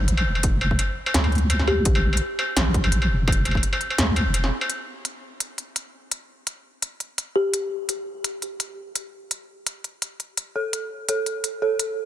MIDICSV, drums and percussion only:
0, 0, Header, 1, 3, 480
1, 0, Start_track
1, 0, Tempo, 355030
1, 591, Time_signature, 4, 2, 24, 8
1, 16296, End_track
2, 0, Start_track
2, 0, Title_t, "Struck metal"
2, 236, Note_on_c, 9, 77, 76
2, 371, Note_off_c, 9, 77, 0
2, 477, Note_on_c, 9, 77, 48
2, 613, Note_off_c, 9, 77, 0
2, 827, Note_on_c, 9, 77, 76
2, 962, Note_off_c, 9, 77, 0
2, 1066, Note_on_c, 9, 77, 50
2, 1201, Note_off_c, 9, 77, 0
2, 1438, Note_on_c, 9, 77, 79
2, 1573, Note_off_c, 9, 77, 0
2, 1676, Note_on_c, 9, 77, 53
2, 1811, Note_off_c, 9, 77, 0
2, 2026, Note_on_c, 9, 77, 76
2, 2161, Note_off_c, 9, 77, 0
2, 2264, Note_on_c, 9, 77, 50
2, 2400, Note_off_c, 9, 77, 0
2, 2638, Note_on_c, 9, 77, 81
2, 2773, Note_off_c, 9, 77, 0
2, 2877, Note_on_c, 9, 77, 55
2, 3013, Note_off_c, 9, 77, 0
2, 3228, Note_on_c, 9, 77, 83
2, 3364, Note_off_c, 9, 77, 0
2, 3469, Note_on_c, 9, 77, 50
2, 3604, Note_off_c, 9, 77, 0
2, 3838, Note_on_c, 9, 77, 82
2, 3973, Note_off_c, 9, 77, 0
2, 4080, Note_on_c, 9, 77, 54
2, 4216, Note_off_c, 9, 77, 0
2, 4429, Note_on_c, 9, 77, 82
2, 4564, Note_off_c, 9, 77, 0
2, 4669, Note_on_c, 9, 77, 52
2, 4750, Note_off_c, 9, 77, 0
2, 4750, Note_on_c, 9, 77, 44
2, 4829, Note_off_c, 9, 77, 0
2, 4829, Note_on_c, 9, 77, 36
2, 4965, Note_off_c, 9, 77, 0
2, 5038, Note_on_c, 9, 77, 80
2, 5174, Note_off_c, 9, 77, 0
2, 5279, Note_on_c, 9, 77, 55
2, 5414, Note_off_c, 9, 77, 0
2, 5628, Note_on_c, 9, 77, 81
2, 5764, Note_off_c, 9, 77, 0
2, 5868, Note_on_c, 9, 77, 54
2, 6003, Note_off_c, 9, 77, 0
2, 6237, Note_on_c, 9, 77, 78
2, 6372, Note_off_c, 9, 77, 0
2, 16296, End_track
3, 0, Start_track
3, 0, Title_t, "Drums"
3, 108, Note_on_c, 9, 42, 59
3, 243, Note_off_c, 9, 42, 0
3, 585, Note_on_c, 9, 42, 75
3, 589, Note_on_c, 9, 36, 105
3, 720, Note_off_c, 9, 42, 0
3, 724, Note_off_c, 9, 36, 0
3, 960, Note_on_c, 9, 36, 59
3, 1066, Note_on_c, 9, 42, 58
3, 1095, Note_off_c, 9, 36, 0
3, 1201, Note_off_c, 9, 42, 0
3, 1546, Note_on_c, 9, 38, 106
3, 1546, Note_on_c, 9, 42, 72
3, 1681, Note_off_c, 9, 38, 0
3, 1681, Note_off_c, 9, 42, 0
3, 1787, Note_on_c, 9, 42, 15
3, 1829, Note_off_c, 9, 42, 0
3, 1829, Note_on_c, 9, 42, 22
3, 1866, Note_off_c, 9, 42, 0
3, 1866, Note_on_c, 9, 42, 27
3, 2001, Note_off_c, 9, 42, 0
3, 2026, Note_on_c, 9, 42, 62
3, 2156, Note_on_c, 9, 38, 34
3, 2161, Note_off_c, 9, 42, 0
3, 2291, Note_off_c, 9, 38, 0
3, 2506, Note_on_c, 9, 42, 76
3, 2509, Note_on_c, 9, 36, 107
3, 2641, Note_off_c, 9, 42, 0
3, 2644, Note_off_c, 9, 36, 0
3, 2934, Note_on_c, 9, 42, 63
3, 3069, Note_off_c, 9, 42, 0
3, 3469, Note_on_c, 9, 38, 105
3, 3469, Note_on_c, 9, 42, 76
3, 3604, Note_off_c, 9, 38, 0
3, 3604, Note_off_c, 9, 42, 0
3, 3709, Note_on_c, 9, 42, 35
3, 3710, Note_on_c, 9, 36, 99
3, 3845, Note_off_c, 9, 36, 0
3, 3845, Note_off_c, 9, 42, 0
3, 3948, Note_on_c, 9, 42, 63
3, 4083, Note_off_c, 9, 42, 0
3, 4430, Note_on_c, 9, 36, 111
3, 4496, Note_on_c, 9, 42, 80
3, 4566, Note_off_c, 9, 36, 0
3, 4631, Note_off_c, 9, 42, 0
3, 4669, Note_on_c, 9, 42, 38
3, 4801, Note_on_c, 9, 36, 60
3, 4805, Note_off_c, 9, 42, 0
3, 4908, Note_on_c, 9, 42, 65
3, 4936, Note_off_c, 9, 36, 0
3, 5043, Note_off_c, 9, 42, 0
3, 5147, Note_on_c, 9, 42, 37
3, 5283, Note_off_c, 9, 42, 0
3, 5387, Note_on_c, 9, 38, 109
3, 5387, Note_on_c, 9, 42, 76
3, 5522, Note_off_c, 9, 38, 0
3, 5522, Note_off_c, 9, 42, 0
3, 5628, Note_on_c, 9, 42, 35
3, 5764, Note_off_c, 9, 42, 0
3, 5868, Note_on_c, 9, 42, 65
3, 5999, Note_on_c, 9, 38, 36
3, 6003, Note_off_c, 9, 42, 0
3, 6134, Note_off_c, 9, 38, 0
3, 6348, Note_on_c, 9, 42, 74
3, 6483, Note_off_c, 9, 42, 0
3, 6827, Note_on_c, 9, 42, 63
3, 6963, Note_off_c, 9, 42, 0
3, 7306, Note_on_c, 9, 42, 71
3, 7442, Note_off_c, 9, 42, 0
3, 7545, Note_on_c, 9, 42, 35
3, 7680, Note_off_c, 9, 42, 0
3, 7787, Note_on_c, 9, 42, 62
3, 7922, Note_off_c, 9, 42, 0
3, 8267, Note_on_c, 9, 42, 74
3, 8403, Note_off_c, 9, 42, 0
3, 8745, Note_on_c, 9, 42, 61
3, 8881, Note_off_c, 9, 42, 0
3, 9226, Note_on_c, 9, 42, 75
3, 9362, Note_off_c, 9, 42, 0
3, 9468, Note_on_c, 9, 42, 36
3, 9603, Note_off_c, 9, 42, 0
3, 9709, Note_on_c, 9, 42, 62
3, 9844, Note_off_c, 9, 42, 0
3, 10188, Note_on_c, 9, 42, 72
3, 10323, Note_off_c, 9, 42, 0
3, 10665, Note_on_c, 9, 42, 61
3, 10800, Note_off_c, 9, 42, 0
3, 11146, Note_on_c, 9, 42, 72
3, 11281, Note_off_c, 9, 42, 0
3, 11386, Note_on_c, 9, 42, 33
3, 11522, Note_off_c, 9, 42, 0
3, 11627, Note_on_c, 9, 42, 60
3, 11762, Note_off_c, 9, 42, 0
3, 12107, Note_on_c, 9, 42, 70
3, 12242, Note_off_c, 9, 42, 0
3, 12587, Note_on_c, 9, 42, 59
3, 12722, Note_off_c, 9, 42, 0
3, 13068, Note_on_c, 9, 42, 69
3, 13203, Note_off_c, 9, 42, 0
3, 13308, Note_on_c, 9, 42, 34
3, 13443, Note_off_c, 9, 42, 0
3, 13547, Note_on_c, 9, 42, 58
3, 13683, Note_off_c, 9, 42, 0
3, 13788, Note_on_c, 9, 42, 32
3, 13923, Note_off_c, 9, 42, 0
3, 14026, Note_on_c, 9, 42, 70
3, 14161, Note_off_c, 9, 42, 0
3, 14509, Note_on_c, 9, 42, 59
3, 14645, Note_off_c, 9, 42, 0
3, 14988, Note_on_c, 9, 42, 70
3, 15123, Note_off_c, 9, 42, 0
3, 15229, Note_on_c, 9, 42, 33
3, 15364, Note_off_c, 9, 42, 0
3, 15466, Note_on_c, 9, 42, 58
3, 15601, Note_off_c, 9, 42, 0
3, 15946, Note_on_c, 9, 42, 71
3, 16081, Note_off_c, 9, 42, 0
3, 16296, End_track
0, 0, End_of_file